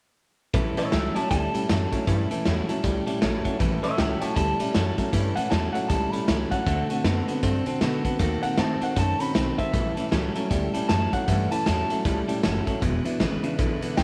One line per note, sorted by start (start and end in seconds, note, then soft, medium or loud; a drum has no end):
0.54 0.69 A1 medium
0.54 0.75 A2 medium
0.54 0.77 A2 medium
0.54 0.77 E3 medium
0.54 0.75 E3 medium
0.54 0.78 G3 medium
0.54 0.77 C#4 medium
0.54 0.76 E4 medium
0.54 0.75 A4 medium
0.54 kick loud
0.54 closed hi-hat medium
0.76 0.91 A2 medium
0.76 0.91 E3 medium
0.76 0.92 G3 soft
0.76 0.92 C#4 soft
0.76 0.92 E4 soft
0.76 0.92 A4 medium
0.76 0.92 C#5 medium
0.76 0.90 E5 medium
0.76 muted upright bass stroke medium
0.76 closed hi-hat medium
0.92 1.08 C#2 medium
0.92 1.15 A2 medium
0.92 1.13 A2 medium
0.92 1.15 E3 medium
0.92 1.13 F#3 medium
0.92 1.16 G3 medium
0.92 1.16 C#4 medium
0.92 1.15 E4 medium
0.92 1.14 A4 medium
0.92 1.15 E5 medium
0.92 1.15 G5 medium
0.92 snare medium
0.92 closed hi-hat medium
1.15 1.29 A2 medium
1.15 1.29 F#3 medium
1.15 1.29 G3 soft
1.15 1.30 C#4 soft
1.15 1.31 E4 medium
1.15 1.30 A4 medium
1.15 1.29 C#5 medium
1.15 1.29 A5 medium
1.15 muted upright bass stroke medium
1.15 closed hi-hat medium
1.30 1.46 D2 medium
1.30 1.51 A2 medium
1.30 1.54 G3 medium
1.30 1.52 G3 medium
1.30 1.54 C#4 medium
1.30 1.54 E4 medium
1.30 1.53 A4 medium
1.30 2.05 A5 loud
1.30 kick loud
1.30 snare soft
1.30 closed hi-hat loud
1.54 1.67 A2 medium
1.54 1.67 G3 medium
1.54 1.69 G3 soft
1.54 1.69 C#4 medium
1.54 1.69 E4 soft
1.54 1.69 A4 medium
1.54 muted upright bass stroke medium
1.54 closed hi-hat medium
1.68 1.85 F#2 medium
1.68 1.89 A2 medium
1.68 1.92 A2 medium
1.68 1.92 E3 medium
1.68 1.90 F#3 medium
1.68 1.92 G3 medium
1.68 1.93 C#4 medium
1.68 1.92 E4 medium
1.68 1.91 A4 loud
1.68 snare loud
1.68 closed hi-hat medium
1.92 2.05 A2 medium
1.92 2.05 F#3 medium
1.92 2.06 G3 medium
1.92 2.07 C#4 medium
1.92 2.07 E4 medium
1.92 2.07 A4 medium
1.92 kick medium
1.92 closed hi-hat medium
2.07 2.23 G2 medium
2.07 2.30 A2 medium
2.07 2.28 A2 medium
2.07 2.28 E3 loud
2.07 2.30 E3 medium
2.07 2.30 G3 medium
2.07 2.31 C#4 medium
2.07 2.31 E4 medium
2.07 2.29 A4 medium
2.07 kick loud
2.07 closed hi-hat medium
2.30 2.43 A2 medium
2.30 2.44 E3 medium
2.30 2.45 G3 soft
2.30 2.46 C#4 medium
2.30 2.46 E4 medium
2.30 2.45 A4 medium
2.30 muted upright bass stroke medium
2.30 closed hi-hat medium
2.45 2.61 E2 medium
2.45 2.66 A2 medium
2.45 2.69 A2 medium
2.45 2.69 E3 loud
2.45 2.66 F#3 medium
2.45 2.69 G3 loud
2.45 2.69 C#4 medium
2.45 2.69 E4 loud
2.45 2.68 A4 medium
2.45 snare loud
2.45 closed hi-hat medium
2.69 2.82 A2 medium
2.69 2.82 F#3 medium
2.69 2.82 G3 soft
2.69 2.83 C#4 medium
2.69 2.84 E4 medium
2.69 2.84 A4 medium
2.69 muted upright bass stroke medium
2.69 closed hi-hat medium
2.83 2.99 C#2 medium
2.83 3.04 A2 medium
2.83 3.04 G3 loud
2.83 3.07 G3 medium
2.83 3.07 C#4 medium
2.83 3.06 E4 medium
2.83 3.05 A4 medium
2.83 kick loud
2.83 closed hi-hat medium
3.06 3.20 A2 medium
3.06 3.20 G3 medium
3.06 3.21 G3 medium
3.06 3.21 C#4 medium
3.06 3.22 E4 medium
3.06 3.21 A4 medium
3.06 muted upright bass stroke medium
3.06 closed hi-hat medium
3.21 3.37 A1 medium
3.21 3.42 A2 medium
3.21 3.45 A2 medium
3.21 3.45 E3 loud
3.21 3.43 F#3 medium
3.21 3.45 G3 medium
3.21 3.45 C#4 medium
3.21 3.45 E4 medium
3.21 3.44 A4 loud
3.21 snare loud
3.21 closed hi-hat medium
3.44 3.58 A2 medium
3.44 3.58 F#3 loud
3.44 3.59 G3 medium
3.44 3.60 C#4 medium
3.44 3.60 E4 medium
3.44 3.60 A4 medium
3.44 kick medium
3.44 closed hi-hat medium
3.59 3.76 A1 medium
3.59 3.80 A2 medium
3.59 3.83 A2 medium
3.59 3.80 E3 loud
3.59 3.83 E3 medium
3.59 3.83 G3 medium
3.59 3.83 C#4 medium
3.59 3.83 E4 medium
3.59 3.82 A4 loud
3.59 kick loud
3.59 closed hi-hat medium
3.82 3.96 A2 medium
3.82 3.96 E3 medium
3.82 3.99 G3 soft
3.82 3.99 C#4 soft
3.82 3.98 E4 medium
3.82 3.98 A4 medium
3.82 3.98 C#5 medium
3.82 3.97 E5 medium
3.82 muted upright bass stroke medium
3.82 closed hi-hat medium
3.97 4.14 C#2 medium
3.97 4.19 A2 medium
3.97 4.22 A2 medium
3.97 4.22 E3 medium
3.97 4.19 F#3 medium
3.97 4.22 G3 medium
3.97 4.22 C#4 medium
3.97 4.22 E4 medium
3.97 4.20 A4 medium
3.97 4.20 E5 medium
3.97 4.21 G5 medium
3.97 snare loud
3.97 closed hi-hat medium
4.21 4.34 A2 medium
4.21 4.35 F#3 medium
4.21 4.36 G3 soft
4.21 4.37 C#4 soft
4.21 4.37 E4 medium
4.21 4.36 A4 medium
4.21 4.35 C#5 medium
4.21 4.35 A5 medium
4.21 muted upright bass stroke medium
4.21 closed hi-hat medium
4.36 4.52 D2 loud
4.36 4.57 A2 medium
4.36 4.57 G3 loud
4.36 4.60 G3 medium
4.36 4.60 C#4 medium
4.36 4.60 E4 medium
4.36 4.59 A4 medium
4.36 5.10 A5 loud
4.36 kick loud
4.36 closed hi-hat medium
4.59 4.73 A2 medium
4.59 4.73 G3 medium
4.59 4.74 G3 soft
4.59 4.74 C#4 medium
4.59 4.75 E4 medium
4.59 4.75 A4 medium
4.59 muted upright bass stroke medium
4.59 closed hi-hat medium
4.74 4.90 F#2 medium
4.74 4.95 A2 medium
4.74 4.98 A2 medium
4.74 4.98 E3 medium
4.74 4.96 F#3 medium
4.74 4.98 G3 medium
4.74 4.98 C#4 medium
4.74 4.98 E4 medium
4.74 4.97 A4 loud
4.74 snare loud
4.74 closed hi-hat medium
4.98 5.11 A2 medium
4.98 5.11 F#3 medium
4.98 5.12 G3 medium
4.98 5.13 C#4 medium
4.98 5.13 E4 medium
4.98 5.13 A4 medium
4.98 kick medium
4.98 closed hi-hat medium
5.13 5.28 G2 medium
5.13 5.34 A2 medium
5.13 5.36 A2 medium
5.13 5.34 E3 loud
5.13 5.36 E3 medium
5.13 5.36 G3 medium
5.13 5.36 C#4 medium
5.13 5.35 E4 medium
5.13 5.34 A4 medium
5.13 kick loud
5.13 closed hi-hat loud
5.35 5.49 A2 medium
5.35 5.50 E3 medium
5.35 5.50 G3 soft
5.35 5.50 C#4 soft
5.35 5.51 E4 medium
5.35 5.51 A4 medium
5.35 5.50 F#5 loud
5.35 muted upright bass stroke medium
5.35 closed hi-hat medium
5.50 5.67 E2 loud
5.50 5.72 A2 medium
5.50 5.74 A2 medium
5.50 5.74 E3 medium
5.50 5.72 F#3 medium
5.50 5.75 G3 medium
5.50 5.74 C#4 medium
5.50 5.74 E4 medium
5.50 5.73 A4 medium
5.50 5.72 A5 medium
5.50 snare medium
5.50 closed hi-hat medium
5.73 5.87 A2 medium
5.73 5.88 F#3 medium
5.73 5.88 G3 medium
5.73 5.88 C#4 soft
5.73 5.89 E4 soft
5.73 5.89 A4 medium
5.73 5.88 F#5 medium
5.73 muted upright bass stroke medium
5.73 closed hi-hat medium
5.89 6.05 C#2 medium
5.89 6.10 A2 medium
5.89 6.12 G3 medium
5.89 6.10 G3 medium
5.89 6.13 C#4 medium
5.89 6.12 E4 medium
5.89 6.11 A4 medium
5.89 6.12 A5 medium
5.89 kick loud
5.89 closed hi-hat medium
6.12 6.26 A2 medium
6.12 6.26 G3 medium
6.12 6.26 G3 soft
6.12 6.27 C#4 medium
6.12 6.27 E4 medium
6.12 6.27 A4 medium
6.12 6.50 B5 medium
6.12 closed hi-hat medium
6.27 6.44 C#2 medium
6.27 6.51 A2 medium
6.27 6.49 A2 medium
6.27 6.51 E3 medium
6.27 6.49 F#3 medium
6.27 6.51 G3 medium
6.27 6.51 C#4 medium
6.27 6.51 E4 medium
6.27 6.50 A4 medium
6.27 snare loud
6.27 closed hi-hat medium
6.51 6.65 A2 medium
6.51 6.65 F#3 medium
6.51 6.66 G3 soft
6.51 6.66 C#4 soft
6.51 6.66 E4 soft
6.51 6.66 A4 medium
6.51 7.63 F#5 medium
6.51 muted upright bass stroke medium
6.51 kick medium
6.51 closed hi-hat medium
6.66 6.82 D2 medium
6.66 6.89 D3 medium
6.66 6.87 D3 medium
6.66 6.89 A3 medium
6.66 6.88 A3 loud
6.66 6.90 C4 medium
6.66 6.89 F#4 medium
6.66 6.88 A4 medium
6.66 kick loud
6.66 closed hi-hat medium
6.89 7.03 D3 medium
6.89 7.03 A3 medium
6.89 7.04 C4 soft
6.89 7.05 F#4 soft
6.89 7.04 A4 medium
6.89 muted upright bass stroke medium
6.89 closed hi-hat medium
7.04 7.19 F#2 medium
7.04 7.25 D3 medium
7.04 7.28 D3 loud
7.04 7.28 A3 medium
7.04 7.26 B3 medium
7.04 7.28 C4 medium
7.04 7.29 F#4 medium
7.04 7.27 A4 loud
7.04 snare loud
7.04 closed hi-hat medium
7.28 7.41 D3 medium
7.28 7.41 B3 medium
7.28 7.43 C4 soft
7.28 7.44 F#4 medium
7.28 7.43 A4 medium
7.28 closed hi-hat medium
7.43 7.58 G2 medium
7.43 7.64 D3 medium
7.43 7.67 A3 medium
7.43 7.64 C4 loud
7.43 7.67 C4 medium
7.43 7.67 F#4 medium
7.43 7.66 A4 medium
7.43 kick loud
7.43 closed hi-hat medium
7.66 7.80 D3 medium
7.66 7.80 C4 medium
7.66 7.81 C4 medium
7.66 7.81 F#4 medium
7.66 7.82 A4 medium
7.66 muted upright bass stroke medium
7.66 closed hi-hat medium
7.81 7.96 B2 medium
7.81 8.05 D3 loud
7.81 8.02 D3 medium
7.81 8.05 A3 medium
7.81 8.03 B3 medium
7.81 8.05 C4 loud
7.81 8.04 F#4 loud
7.81 8.03 A4 loud
7.81 snare loud
7.81 closed hi-hat medium
8.04 8.18 D3 medium
8.04 8.18 B3 medium
8.04 8.19 C4 medium
8.04 8.19 F#4 medium
8.04 8.20 A4 medium
8.04 muted upright bass stroke medium
8.04 kick medium
8.04 closed hi-hat medium
8.19 8.35 D#2 medium
8.19 8.41 D#3 medium
8.19 8.43 D#3 medium
8.19 8.43 A3 medium
8.19 8.41 A#3 medium
8.19 8.43 C4 medium
8.19 8.42 F#4 medium
8.19 8.41 A4 loud
8.19 kick loud
8.19 closed hi-hat medium
8.42 8.56 D#3 medium
8.42 8.57 A#3 medium
8.42 8.57 C4 soft
8.42 8.57 F#4 soft
8.42 8.57 A4 medium
8.42 8.59 F#5 loud
8.42 muted upright bass stroke medium
8.42 closed hi-hat medium
8.57 8.73 A2 medium
8.57 8.81 D#3 medium
8.57 8.79 D#3 medium
8.57 8.81 A3 medium
8.57 8.81 C4 medium
8.57 8.79 C4 medium
8.57 8.81 F#4 medium
8.57 8.80 A4 medium
8.57 8.81 A5 medium
8.57 snare loud
8.57 closed hi-hat medium
8.81 8.94 D#3 medium
8.81 8.95 C4 medium
8.81 8.95 C4 soft
8.81 8.96 F#4 soft
8.81 8.96 A4 medium
8.81 8.97 F#5 medium
8.81 muted upright bass stroke medium
8.81 closed hi-hat medium
8.95 9.12 F#2 loud
8.95 9.17 D#3 medium
8.95 9.19 A3 medium
8.95 9.20 C4 medium
8.95 9.18 C#4 loud
8.95 9.19 F#4 medium
8.95 9.18 A4 medium
8.95 9.21 A5 medium
8.95 kick loud
8.95 snare soft
8.95 closed hi-hat medium
9.19 9.34 D#3 medium
9.19 9.34 C4 soft
9.19 9.34 C#4 medium
9.19 9.34 F#4 soft
9.19 9.34 A4 medium
9.19 9.58 B5 loud
9.19 closed hi-hat medium
9.33 9.51 B1 loud
9.33 9.58 D#3 medium
9.33 9.56 D#3 medium
9.33 9.58 A3 medium
9.33 9.59 C4 medium
9.33 9.56 C4 medium
9.33 9.57 F#4 loud
9.33 9.56 A4 medium
9.33 snare loud
9.33 closed hi-hat medium
9.57 9.72 D#3 medium
9.57 9.72 C4 loud
9.57 9.72 C4 soft
9.57 9.73 F#4 medium
9.57 9.72 A4 medium
9.57 10.71 E5 loud
9.57 muted upright bass stroke medium
9.57 kick medium
9.57 closed hi-hat medium
9.72 9.89 A1 loud
9.72 9.96 A2 medium
9.72 9.95 A2 medium
9.72 9.96 E3 medium
9.72 9.95 E3 medium
9.72 9.96 G3 medium
9.72 9.95 C#4 medium
9.72 9.95 E4 medium
9.72 9.94 A4 medium
9.72 kick loud
9.72 closed hi-hat medium
9.95 10.10 A2 medium
9.95 10.11 E3 medium
9.95 10.11 G3 soft
9.95 10.11 C#4 soft
9.95 10.11 E4 medium
9.95 10.11 A4 medium
9.95 muted upright bass stroke medium
9.95 closed hi-hat medium
10.11 10.28 C#2 medium
10.11 10.35 A2 medium
10.11 10.33 A2 medium
10.11 10.35 E3 loud
10.11 10.33 F#3 medium
10.11 10.35 G3 loud
10.11 10.36 C#4 loud
10.11 10.35 E4 medium
10.11 10.34 A4 loud
10.11 snare loud
10.11 closed hi-hat medium
10.35 10.49 A2 medium
10.35 10.49 F#3 medium
10.35 10.48 G3 soft
10.35 10.49 C#4 medium
10.35 10.50 E4 medium
10.35 10.50 A4 medium
10.35 muted upright bass stroke medium
10.35 closed hi-hat medium
10.49 10.66 D2 medium
10.49 10.71 A2 medium
10.49 10.73 G3 medium
10.49 10.72 G3 loud
10.49 10.74 C#4 medium
10.49 10.73 E4 medium
10.49 10.72 A4 medium
10.49 kick loud
10.49 closed hi-hat medium
10.74 10.87 A2 medium
10.74 10.88 G3 medium
10.74 10.89 C#4 medium
10.74 10.89 E4 medium
10.74 10.89 A4 medium
10.74 muted upright bass stroke medium
10.74 closed hi-hat medium
10.89 11.05 F#2 medium
10.89 11.13 A2 medium
10.89 11.10 A2 medium
10.89 11.13 E3 medium
10.89 11.11 F#3 medium
10.89 11.13 G3 medium
10.89 11.13 C#4 medium
10.89 11.12 E4 loud
10.89 11.11 A4 medium
10.89 11.12 A5 medium
10.89 snare loud
10.89 closed hi-hat medium
11.12 11.26 A2 medium
11.12 11.26 F#3 medium
11.12 11.27 G3 soft
11.12 11.27 C#4 soft
11.12 11.27 E4 medium
11.12 11.27 A4 medium
11.12 11.51 F#5 loud
11.12 kick medium
11.12 closed hi-hat medium
11.27 11.44 G2 medium
11.27 11.51 A2 medium
11.27 11.49 A2 medium
11.27 11.51 E3 medium
11.27 11.49 E3 loud
11.27 11.52 G3 medium
11.27 11.51 C#4 medium
11.27 11.50 E4 medium
11.27 11.49 A4 medium
11.27 kick loud
11.27 closed hi-hat medium
11.51 11.65 A2 medium
11.51 11.65 E3 medium
11.51 11.65 G3 soft
11.51 11.65 C#4 medium
11.51 11.66 E4 soft
11.51 11.66 A4 soft
11.51 11.65 A5 medium
11.51 muted upright bass stroke medium
11.51 closed hi-hat medium
11.65 11.83 E2 medium
11.65 11.89 A2 medium
11.65 11.88 A2 medium
11.65 11.89 E3 medium
11.65 11.88 F#3 medium
11.65 11.90 G3 medium
11.65 11.90 C#4 medium
11.65 11.90 E4 medium
11.65 11.89 A4 medium
11.65 12.41 A5 loud
11.65 snare medium
11.65 closed hi-hat medium
11.90 12.03 A2 medium
11.90 12.04 F#3 medium
11.90 12.03 G3 soft
11.90 12.04 C#4 soft
11.90 12.05 E4 medium
11.90 12.05 A4 medium
11.90 muted upright bass stroke medium
11.90 closed hi-hat medium
12.04 12.21 C#2 loud
12.04 12.26 A2 medium
12.04 12.28 G3 medium
12.04 12.26 G3 medium
12.04 12.28 C#4 medium
12.04 12.27 E4 medium
12.04 12.27 A4 medium
12.04 kick loud
12.04 snare soft
12.04 closed hi-hat medium
12.28 12.42 A2 medium
12.28 12.42 G3 medium
12.28 12.43 G3 medium
12.28 12.43 C#4 medium
12.28 12.43 E4 medium
12.28 12.43 A4 medium
12.28 muted upright bass stroke medium
12.28 closed hi-hat medium
12.43 12.60 F#1 medium
12.43 12.67 A2 medium
12.43 12.64 A2 medium
12.43 12.67 E3 loud
12.43 12.65 F#3 medium
12.43 12.67 G3 medium
12.43 12.67 C#4 loud
12.43 12.66 E4 loud
12.43 12.65 A4 loud
12.43 snare loud
12.43 closed hi-hat medium
12.66 12.80 A2 medium
12.66 12.81 F#3 medium
12.66 12.81 G3 soft
12.66 12.81 C#4 medium
12.66 12.81 E4 medium
12.66 12.82 A4 medium
12.66 kick medium
12.66 closed hi-hat medium
12.81 12.97 E1 medium
12.81 13.03 E2 medium
12.81 13.03 B2 medium
12.81 13.05 E3 medium
12.81 13.05 G#3 medium
12.81 13.05 D4 medium
12.81 13.04 E4 medium
12.81 13.03 B4 medium
12.81 kick loud
12.81 closed hi-hat medium
13.04 13.18 E2 medium
13.04 13.19 B2 medium
13.04 13.19 D4 medium
13.04 13.20 E4 medium
13.04 13.20 B4 medium
13.04 muted upright bass stroke medium
13.04 closed hi-hat medium
13.20 13.36 G#1 medium
13.20 13.41 E2 medium
13.20 13.42 C#3 medium
13.20 13.44 E3 medium
13.20 13.44 G#3 medium
13.20 13.44 D4 medium
13.20 13.44 E4 loud
13.20 13.42 B4 loud
13.20 snare loud
13.20 closed hi-hat medium
13.43 13.57 E2 medium
13.43 13.58 C#3 medium
13.43 13.58 D4 medium
13.43 13.58 E4 medium
13.43 13.59 B4 medium
13.43 closed hi-hat medium
13.58 13.75 A1 loud
13.58 13.80 E2 medium
13.58 13.80 D3 medium
13.58 13.82 G#3 medium
13.58 13.82 D4 medium
13.58 13.81 E4 medium
13.58 13.80 B4 medium
13.58 kick loud
13.58 closed hi-hat medium
13.81 13.96 E2 medium
13.81 13.96 D3 medium
13.81 13.96 D4 medium
13.81 13.97 E4 medium
13.81 13.97 B4 medium
13.81 muted upright bass stroke medium
13.81 closed hi-hat medium
13.97 14.03 C#2 medium
13.97 14.03 E2 medium
13.97 14.03 C#3 medium
13.97 14.03 E3 medium
13.97 14.03 G#3 medium
13.97 14.03 D4 medium
13.97 14.03 E4 medium
13.97 14.03 B4 medium
13.97 14.03 G5 medium
13.97 snare loud
13.97 closed hi-hat medium